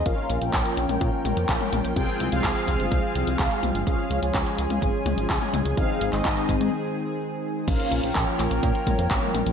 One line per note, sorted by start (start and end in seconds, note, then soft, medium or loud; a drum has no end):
0.06 0.15 A#1 loud
0.06 5.73 F3 medium
0.06 1.94 A#3 medium
0.06 1.94 C#4 medium
0.06 0.39 C#4 loud
0.06 0.39 F4 medium
0.06 1.94 A#4 medium
0.06 0.39 A#4 medium
0.06 0.39 F5 loud
0.06 kick loud
0.06 closed hi-hat medium
0.29 0.39 A#1 loud
0.29 closed hi-hat medium
0.41 0.50 A#1 medium
0.41 1.94 C#4 medium
0.41 1.94 F4 medium
0.41 1.94 A#4 medium
0.41 1.94 G5 medium
0.41 closed hi-hat soft
0.53 0.62 A#1 loud
0.53 kick loud
0.53 clap loud
0.53 closed hi-hat medium
0.65 closed hi-hat soft
0.77 0.86 A#1 medium
0.77 closed hi-hat medium
0.89 0.98 A#1 medium
0.89 closed hi-hat soft
0.89 high tom medium
1.01 1.10 A#2 loud
1.01 kick loud
1.01 closed hi-hat medium
1.25 1.34 A#1 medium
1.25 closed hi-hat medium
1.25 high tom medium
1.37 1.46 F2 medium
1.37 closed hi-hat soft
1.49 1.58 A#1 loud
1.49 kick loud
1.49 clap loud
1.49 closed hi-hat medium
1.61 closed hi-hat soft
1.61 high tom medium
1.73 1.81 A#1 loud
1.73 closed hi-hat medium
1.73 high tom medium
1.84 1.93 A#1 medium
1.84 closed hi-hat soft
1.96 2.05 C2 loud
1.96 3.85 G#3 medium
1.96 3.85 C4 medium
1.96 2.29 C4 loud
1.96 2.29 F4 medium
1.96 3.85 G#4 medium
1.96 2.29 G#4 medium
1.96 2.29 G5 loud
1.96 kick loud
1.96 closed hi-hat medium
2.20 2.29 C2 medium
2.20 closed hi-hat medium
2.32 2.41 C2 medium
2.32 3.84 C4 loud
2.32 3.84 F4 medium
2.32 3.84 G#4 medium
2.32 3.84 F5 loud
2.32 closed hi-hat soft
2.44 2.53 C2 loud
2.44 kick loud
2.44 clap loud
2.44 closed hi-hat medium
2.56 closed hi-hat soft
2.68 2.77 C2 medium
2.68 kick medium
2.68 closed hi-hat medium
2.80 2.89 G1 medium
2.80 closed hi-hat soft
2.92 3.01 C2 loud
2.92 kick loud
2.92 closed hi-hat medium
3.15 3.24 C2 medium
3.15 closed hi-hat medium
3.27 3.36 C2 medium
3.27 closed hi-hat medium
3.39 3.48 C2 loud
3.39 kick loud
3.39 clap loud
3.39 closed hi-hat medium
3.51 closed hi-hat soft
3.63 3.72 C2 medium
3.63 closed hi-hat medium
3.63 high tom medium
3.75 3.84 G1 medium
3.75 closed hi-hat soft
3.87 3.96 C#2 loud
3.87 7.64 G#3 medium
3.87 5.75 C#4 medium
3.87 4.20 C#4 loud
3.87 4.20 F4 medium
3.87 5.75 G#4 medium
3.87 4.20 G#4 medium
3.87 4.20 F5 loud
3.87 kick loud
3.87 closed hi-hat medium
4.11 4.20 C#2 medium
4.11 closed hi-hat medium
4.22 4.31 C#2 medium
4.22 5.74 C#4 medium
4.22 5.74 F4 medium
4.22 5.74 G#4 medium
4.22 5.74 G#5 medium
4.22 closed hi-hat soft
4.34 4.43 C#2 loud
4.34 kick loud
4.34 clap loud
4.34 closed hi-hat medium
4.46 closed hi-hat soft
4.58 4.67 C#2 medium
4.58 closed hi-hat medium
4.70 4.79 C#2 medium
4.70 closed hi-hat soft
4.70 high tom medium
4.82 4.91 G#1 loud
4.82 kick loud
4.82 closed hi-hat medium
5.06 5.15 C#2 loud
5.06 closed hi-hat medium
5.06 high tom medium
5.18 5.27 G#1 medium
5.18 closed hi-hat medium
5.30 5.39 C#2 loud
5.30 kick loud
5.30 clap loud
5.30 closed hi-hat medium
5.42 closed hi-hat soft
5.42 high tom medium
5.53 5.62 C#2 loud
5.53 closed hi-hat medium
5.53 high tom medium
5.65 5.74 C#2 medium
5.65 closed hi-hat soft
5.77 5.86 G#1 loud
5.77 7.66 D#3 medium
5.77 6.10 C4 loud
5.77 7.66 C4 medium
5.77 6.10 D#4 medium
5.77 6.10 G#4 loud
5.77 7.66 G#4 medium
5.77 6.10 F5 loud
5.77 kick loud
5.77 closed hi-hat medium
6.01 6.10 G#1 loud
6.01 closed hi-hat medium
6.13 6.22 G#1 medium
6.13 6.72 C4 loud
6.13 6.72 D#4 medium
6.13 6.73 G#4 medium
6.13 6.72 D#5 loud
6.13 clap soft
6.13 closed hi-hat medium
6.25 6.34 G#1 loud
6.25 kick loud
6.25 clap loud
6.25 closed hi-hat medium
6.37 closed hi-hat soft
6.49 6.58 G#1 medium
6.49 kick medium
6.49 closed hi-hat medium
6.61 6.70 G#2 medium
6.61 closed hi-hat soft
6.61 high tom medium
7.68 7.77 A#1 loud
7.68 9.52 F3 medium
7.68 9.52 A#3 medium
7.68 8.01 C#4 loud
7.68 9.52 C#4 medium
7.68 8.01 F4 medium
7.68 8.01 A#4 loud
7.68 9.52 A#4 medium
7.68 8.01 F5 loud
7.68 kick loud
7.68 closed hi-hat medium
7.68 crash loud
7.80 closed hi-hat soft
7.92 8.01 A#1 medium
7.92 closed hi-hat medium
8.03 8.12 A#1 medium
8.03 9.52 C#4 medium
8.03 9.52 F4 medium
8.03 9.52 A#4 medium
8.03 9.52 G5 medium
8.03 closed hi-hat soft
8.15 8.24 A#1 loud
8.15 kick loud
8.15 clap loud
8.15 closed hi-hat medium
8.39 8.48 A#1 medium
8.39 clap medium
8.39 closed hi-hat medium
8.51 8.60 A#1 medium
8.51 closed hi-hat medium
8.63 8.72 A#2 loud
8.63 kick loud
8.63 closed hi-hat medium
8.75 closed hi-hat soft
8.87 8.96 A#1 loud
8.87 kick medium
8.87 closed hi-hat medium
8.87 high tom medium
8.99 9.08 F2 medium
8.99 closed hi-hat medium
9.11 9.20 A#1 loud
9.11 kick loud
9.11 clap loud
9.11 closed hi-hat medium
9.23 high tom medium
9.34 9.43 A#1 loud
9.34 closed hi-hat medium
9.34 high tom medium
9.46 9.52 A#1 medium
9.46 closed hi-hat medium